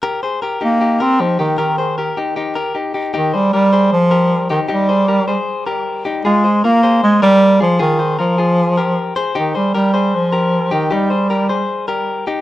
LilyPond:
<<
  \new Staff \with { instrumentName = "Clean electric guitar" } { \time 4/4 \key ees \major \tempo 4 = 154 <g' bes'>8 <aes' c''>8 <g' bes'>8 <ees' g'>8 <ees' g'>8 <g' bes'>8 <ees' g'>8 <ees' g'>8 | <g' bes'>8 <aes' c''>8 <g' bes'>8 <ees' g'>8 <ees' g'>8 <g' bes'>8 <ees' g'>8 <ees' g'>8 | <ees' g'>8 <aes' c''>8 <g' bes'>8 <aes' c''>4 <g' bes'>4 <ees' g'>8 | <ees' g'>8 <aes' c''>8 <g' bes'>8 <aes' c''>4 <g' bes'>4 <ees' g'>8 |
<f' aes'>8 <aes' c''>8 <f' bes'>8 <aes' c''>4 <g' bes'>4 <f' aes'>8 | <f' aes'>8 <aes' c''>8 <f' bes'>8 <f' aes'>4 <g' bes'>4 <aes' c''>8 | <ees' g'>8 <aes' c''>8 <g' bes'>8 <aes' c''>4 <g' bes'>4 <ees' g'>8 | <ees' g'>8 <aes' c''>8 <g' bes'>8 <aes' c''>4 <g' bes'>4 <ees' g'>8 | }
  \new Staff \with { instrumentName = "Bass clarinet" } { \clef bass \time 4/4 \key ees \major r4. bes4 c'8 f8 ees8 | ees4. r2 r8 | ees8 g8 g4 f4. ees8 | g2 r2 |
aes4 bes4 aes8 g4 f8 | ees4 f2~ f8 r8 | ees8 g8 g4 f4. ees8 | g2 r2 | }
>>